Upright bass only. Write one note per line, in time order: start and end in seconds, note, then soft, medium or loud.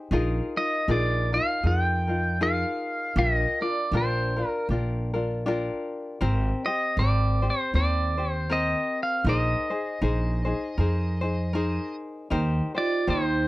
0.11 0.39 A#1 loud
0.88 1.37 A#1 medium
1.64 2.63 F2 medium
3.16 3.44 A#1 loud
3.92 4.41 A#1 medium
4.69 5.68 A#1 medium
6.21 6.49 G#1 loud
6.97 7.47 G#1 medium
7.74 8.73 D#2 medium
9.24 9.53 A#1 loud
10.02 10.51 A#1 medium
10.78 11.77 F2 medium
12.31 12.59 D#2 loud
13.08 13.48 D#2 medium